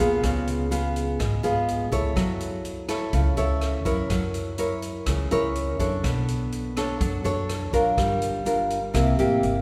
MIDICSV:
0, 0, Header, 1, 4, 480
1, 0, Start_track
1, 0, Tempo, 483871
1, 232, Time_signature, 4, 2, 24, 8
1, 9539, End_track
2, 0, Start_track
2, 0, Title_t, "Nylon-string guitar"
2, 0, Program_c, 0, 24
2, 0, Note_on_c, 0, 46, 51
2, 0, Note_on_c, 0, 59, 67
2, 0, Note_on_c, 0, 65, 70
2, 0, Note_on_c, 0, 68, 75
2, 207, Note_off_c, 0, 46, 0
2, 230, Note_on_c, 0, 49, 51
2, 672, Note_off_c, 0, 59, 0
2, 675, Note_off_c, 0, 65, 0
2, 676, Note_off_c, 0, 68, 0
2, 705, Note_on_c, 0, 59, 56
2, 709, Note_on_c, 0, 65, 53
2, 710, Note_on_c, 0, 68, 58
2, 1166, Note_off_c, 0, 49, 0
2, 1183, Note_on_c, 0, 56, 49
2, 1186, Note_off_c, 0, 59, 0
2, 1187, Note_off_c, 0, 65, 0
2, 1188, Note_off_c, 0, 68, 0
2, 1421, Note_on_c, 0, 59, 54
2, 1424, Note_on_c, 0, 65, 55
2, 1427, Note_on_c, 0, 68, 66
2, 1868, Note_off_c, 0, 59, 0
2, 1870, Note_off_c, 0, 65, 0
2, 1870, Note_off_c, 0, 68, 0
2, 1900, Note_on_c, 0, 64, 62
2, 1908, Note_on_c, 0, 69, 61
2, 1910, Note_on_c, 0, 73, 73
2, 2123, Note_off_c, 0, 56, 0
2, 2140, Note_on_c, 0, 54, 54
2, 2828, Note_off_c, 0, 64, 0
2, 2829, Note_off_c, 0, 69, 0
2, 2832, Note_off_c, 0, 73, 0
2, 2861, Note_on_c, 0, 64, 65
2, 2867, Note_on_c, 0, 69, 65
2, 2874, Note_on_c, 0, 73, 75
2, 3081, Note_off_c, 0, 54, 0
2, 3105, Note_on_c, 0, 49, 50
2, 3308, Note_off_c, 0, 64, 0
2, 3311, Note_off_c, 0, 69, 0
2, 3313, Note_off_c, 0, 73, 0
2, 3341, Note_on_c, 0, 64, 64
2, 3344, Note_on_c, 0, 69, 63
2, 3352, Note_on_c, 0, 73, 75
2, 3788, Note_off_c, 0, 64, 0
2, 3790, Note_off_c, 0, 69, 0
2, 3792, Note_off_c, 0, 73, 0
2, 3820, Note_on_c, 0, 64, 63
2, 3826, Note_on_c, 0, 70, 61
2, 3829, Note_on_c, 0, 73, 70
2, 4044, Note_off_c, 0, 49, 0
2, 4069, Note_on_c, 0, 54, 55
2, 4507, Note_off_c, 0, 64, 0
2, 4509, Note_off_c, 0, 70, 0
2, 4512, Note_off_c, 0, 73, 0
2, 4547, Note_on_c, 0, 64, 52
2, 4551, Note_on_c, 0, 70, 50
2, 4557, Note_on_c, 0, 73, 62
2, 5006, Note_off_c, 0, 54, 0
2, 5029, Note_on_c, 0, 49, 53
2, 5231, Note_off_c, 0, 64, 0
2, 5233, Note_off_c, 0, 70, 0
2, 5234, Note_off_c, 0, 73, 0
2, 5269, Note_on_c, 0, 64, 66
2, 5275, Note_on_c, 0, 70, 67
2, 5280, Note_on_c, 0, 73, 77
2, 5713, Note_off_c, 0, 64, 0
2, 5714, Note_off_c, 0, 70, 0
2, 5714, Note_off_c, 0, 73, 0
2, 5748, Note_on_c, 0, 62, 63
2, 5751, Note_on_c, 0, 69, 61
2, 5756, Note_on_c, 0, 73, 66
2, 5966, Note_off_c, 0, 49, 0
2, 5987, Note_on_c, 0, 59, 54
2, 6672, Note_off_c, 0, 62, 0
2, 6672, Note_off_c, 0, 69, 0
2, 6673, Note_off_c, 0, 73, 0
2, 6716, Note_on_c, 0, 62, 65
2, 6720, Note_on_c, 0, 69, 70
2, 6724, Note_on_c, 0, 73, 69
2, 6925, Note_off_c, 0, 59, 0
2, 6953, Note_on_c, 0, 54, 52
2, 7155, Note_off_c, 0, 62, 0
2, 7157, Note_off_c, 0, 69, 0
2, 7159, Note_off_c, 0, 73, 0
2, 7185, Note_on_c, 0, 62, 59
2, 7189, Note_on_c, 0, 69, 64
2, 7194, Note_on_c, 0, 73, 68
2, 7630, Note_off_c, 0, 62, 0
2, 7632, Note_off_c, 0, 69, 0
2, 7634, Note_off_c, 0, 73, 0
2, 7667, Note_on_c, 0, 62, 57
2, 7672, Note_on_c, 0, 65, 57
2, 7673, Note_on_c, 0, 70, 62
2, 7888, Note_off_c, 0, 54, 0
2, 7915, Note_on_c, 0, 55, 56
2, 8351, Note_off_c, 0, 62, 0
2, 8353, Note_off_c, 0, 65, 0
2, 8354, Note_off_c, 0, 70, 0
2, 8387, Note_on_c, 0, 62, 52
2, 8393, Note_on_c, 0, 65, 51
2, 8397, Note_on_c, 0, 70, 53
2, 8712, Note_off_c, 0, 62, 0
2, 8715, Note_off_c, 0, 65, 0
2, 8717, Note_off_c, 0, 70, 0
2, 8849, Note_off_c, 0, 55, 0
2, 8864, Note_on_c, 0, 48, 58
2, 8867, Note_on_c, 0, 58, 51
2, 8873, Note_on_c, 0, 67, 52
2, 8875, Note_on_c, 0, 64, 60
2, 9071, Note_off_c, 0, 58, 0
2, 9072, Note_off_c, 0, 64, 0
2, 9074, Note_off_c, 0, 67, 0
2, 9112, Note_on_c, 0, 58, 58
2, 9117, Note_on_c, 0, 64, 60
2, 9121, Note_on_c, 0, 67, 66
2, 9539, Note_off_c, 0, 48, 0
2, 9539, Note_off_c, 0, 58, 0
2, 9539, Note_off_c, 0, 64, 0
2, 9539, Note_off_c, 0, 67, 0
2, 9539, End_track
3, 0, Start_track
3, 0, Title_t, "Upright bass"
3, 0, Program_c, 1, 32
3, 0, Note_on_c, 1, 39, 88
3, 217, Note_off_c, 1, 39, 0
3, 234, Note_on_c, 1, 37, 82
3, 1153, Note_off_c, 1, 37, 0
3, 1187, Note_on_c, 1, 32, 95
3, 1412, Note_off_c, 1, 32, 0
3, 1425, Note_on_c, 1, 32, 72
3, 1909, Note_off_c, 1, 32, 0
3, 1909, Note_on_c, 1, 37, 82
3, 2133, Note_off_c, 1, 37, 0
3, 2147, Note_on_c, 1, 42, 86
3, 3069, Note_off_c, 1, 42, 0
3, 3106, Note_on_c, 1, 37, 93
3, 3332, Note_off_c, 1, 37, 0
3, 3347, Note_on_c, 1, 37, 81
3, 3828, Note_off_c, 1, 37, 0
3, 3828, Note_on_c, 1, 42, 83
3, 4052, Note_off_c, 1, 42, 0
3, 4064, Note_on_c, 1, 42, 94
3, 4988, Note_off_c, 1, 42, 0
3, 5025, Note_on_c, 1, 37, 97
3, 5251, Note_off_c, 1, 37, 0
3, 5271, Note_on_c, 1, 37, 81
3, 5752, Note_off_c, 1, 37, 0
3, 5752, Note_on_c, 1, 42, 87
3, 5975, Note_off_c, 1, 42, 0
3, 5991, Note_on_c, 1, 35, 85
3, 6912, Note_off_c, 1, 35, 0
3, 6950, Note_on_c, 1, 42, 102
3, 7174, Note_off_c, 1, 42, 0
3, 7193, Note_on_c, 1, 42, 81
3, 7670, Note_off_c, 1, 42, 0
3, 7670, Note_on_c, 1, 35, 79
3, 7894, Note_off_c, 1, 35, 0
3, 7913, Note_on_c, 1, 31, 92
3, 8833, Note_off_c, 1, 31, 0
3, 8873, Note_on_c, 1, 36, 93
3, 9095, Note_off_c, 1, 36, 0
3, 9113, Note_on_c, 1, 33, 72
3, 9329, Note_off_c, 1, 33, 0
3, 9357, Note_on_c, 1, 31, 76
3, 9539, Note_off_c, 1, 31, 0
3, 9539, End_track
4, 0, Start_track
4, 0, Title_t, "Drums"
4, 0, Note_on_c, 9, 42, 46
4, 96, Note_off_c, 9, 42, 0
4, 232, Note_on_c, 9, 37, 53
4, 232, Note_on_c, 9, 42, 56
4, 234, Note_on_c, 9, 36, 60
4, 332, Note_off_c, 9, 37, 0
4, 332, Note_off_c, 9, 42, 0
4, 333, Note_off_c, 9, 36, 0
4, 470, Note_on_c, 9, 42, 49
4, 570, Note_off_c, 9, 42, 0
4, 711, Note_on_c, 9, 42, 46
4, 810, Note_off_c, 9, 42, 0
4, 952, Note_on_c, 9, 42, 45
4, 1051, Note_off_c, 9, 42, 0
4, 1189, Note_on_c, 9, 37, 60
4, 1189, Note_on_c, 9, 42, 58
4, 1190, Note_on_c, 9, 36, 59
4, 1288, Note_off_c, 9, 37, 0
4, 1288, Note_off_c, 9, 42, 0
4, 1290, Note_off_c, 9, 36, 0
4, 1428, Note_on_c, 9, 42, 37
4, 1527, Note_off_c, 9, 42, 0
4, 1671, Note_on_c, 9, 42, 44
4, 1770, Note_off_c, 9, 42, 0
4, 1906, Note_on_c, 9, 42, 43
4, 1908, Note_on_c, 9, 36, 52
4, 2005, Note_off_c, 9, 42, 0
4, 2008, Note_off_c, 9, 36, 0
4, 2148, Note_on_c, 9, 37, 55
4, 2148, Note_on_c, 9, 42, 52
4, 2149, Note_on_c, 9, 36, 54
4, 2247, Note_off_c, 9, 37, 0
4, 2247, Note_off_c, 9, 42, 0
4, 2248, Note_off_c, 9, 36, 0
4, 2385, Note_on_c, 9, 42, 42
4, 2484, Note_off_c, 9, 42, 0
4, 2626, Note_on_c, 9, 42, 41
4, 2725, Note_off_c, 9, 42, 0
4, 2863, Note_on_c, 9, 37, 60
4, 2863, Note_on_c, 9, 42, 44
4, 2962, Note_off_c, 9, 37, 0
4, 2962, Note_off_c, 9, 42, 0
4, 3104, Note_on_c, 9, 42, 54
4, 3106, Note_on_c, 9, 36, 58
4, 3203, Note_off_c, 9, 42, 0
4, 3205, Note_off_c, 9, 36, 0
4, 3343, Note_on_c, 9, 42, 39
4, 3442, Note_off_c, 9, 42, 0
4, 3584, Note_on_c, 9, 37, 53
4, 3584, Note_on_c, 9, 42, 42
4, 3683, Note_off_c, 9, 37, 0
4, 3683, Note_off_c, 9, 42, 0
4, 3826, Note_on_c, 9, 42, 44
4, 3827, Note_on_c, 9, 36, 57
4, 3925, Note_off_c, 9, 42, 0
4, 3926, Note_off_c, 9, 36, 0
4, 4066, Note_on_c, 9, 37, 56
4, 4066, Note_on_c, 9, 42, 53
4, 4068, Note_on_c, 9, 36, 58
4, 4165, Note_off_c, 9, 37, 0
4, 4165, Note_off_c, 9, 42, 0
4, 4167, Note_off_c, 9, 36, 0
4, 4305, Note_on_c, 9, 42, 42
4, 4404, Note_off_c, 9, 42, 0
4, 4542, Note_on_c, 9, 42, 46
4, 4641, Note_off_c, 9, 42, 0
4, 4784, Note_on_c, 9, 42, 45
4, 4883, Note_off_c, 9, 42, 0
4, 5023, Note_on_c, 9, 37, 65
4, 5023, Note_on_c, 9, 42, 59
4, 5027, Note_on_c, 9, 36, 56
4, 5122, Note_off_c, 9, 37, 0
4, 5122, Note_off_c, 9, 42, 0
4, 5127, Note_off_c, 9, 36, 0
4, 5267, Note_on_c, 9, 42, 43
4, 5366, Note_off_c, 9, 42, 0
4, 5510, Note_on_c, 9, 42, 42
4, 5609, Note_off_c, 9, 42, 0
4, 5751, Note_on_c, 9, 36, 56
4, 5754, Note_on_c, 9, 42, 42
4, 5850, Note_off_c, 9, 36, 0
4, 5853, Note_off_c, 9, 42, 0
4, 5992, Note_on_c, 9, 36, 55
4, 5992, Note_on_c, 9, 37, 58
4, 5992, Note_on_c, 9, 42, 57
4, 6091, Note_off_c, 9, 36, 0
4, 6091, Note_off_c, 9, 37, 0
4, 6091, Note_off_c, 9, 42, 0
4, 6234, Note_on_c, 9, 42, 45
4, 6333, Note_off_c, 9, 42, 0
4, 6471, Note_on_c, 9, 42, 39
4, 6571, Note_off_c, 9, 42, 0
4, 6713, Note_on_c, 9, 37, 60
4, 6713, Note_on_c, 9, 42, 45
4, 6812, Note_off_c, 9, 37, 0
4, 6812, Note_off_c, 9, 42, 0
4, 6951, Note_on_c, 9, 36, 60
4, 6951, Note_on_c, 9, 42, 55
4, 7050, Note_off_c, 9, 36, 0
4, 7050, Note_off_c, 9, 42, 0
4, 7192, Note_on_c, 9, 42, 35
4, 7291, Note_off_c, 9, 42, 0
4, 7433, Note_on_c, 9, 37, 57
4, 7433, Note_on_c, 9, 42, 42
4, 7532, Note_off_c, 9, 37, 0
4, 7532, Note_off_c, 9, 42, 0
4, 7672, Note_on_c, 9, 36, 52
4, 7672, Note_on_c, 9, 42, 43
4, 7771, Note_off_c, 9, 36, 0
4, 7771, Note_off_c, 9, 42, 0
4, 7912, Note_on_c, 9, 36, 58
4, 7914, Note_on_c, 9, 37, 61
4, 7914, Note_on_c, 9, 42, 52
4, 8011, Note_off_c, 9, 36, 0
4, 8013, Note_off_c, 9, 37, 0
4, 8013, Note_off_c, 9, 42, 0
4, 8151, Note_on_c, 9, 42, 44
4, 8250, Note_off_c, 9, 42, 0
4, 8393, Note_on_c, 9, 42, 43
4, 8492, Note_off_c, 9, 42, 0
4, 8634, Note_on_c, 9, 42, 44
4, 8733, Note_off_c, 9, 42, 0
4, 8873, Note_on_c, 9, 36, 56
4, 8873, Note_on_c, 9, 37, 60
4, 8873, Note_on_c, 9, 42, 64
4, 8972, Note_off_c, 9, 36, 0
4, 8973, Note_off_c, 9, 37, 0
4, 8973, Note_off_c, 9, 42, 0
4, 9114, Note_on_c, 9, 42, 41
4, 9213, Note_off_c, 9, 42, 0
4, 9355, Note_on_c, 9, 42, 45
4, 9454, Note_off_c, 9, 42, 0
4, 9539, End_track
0, 0, End_of_file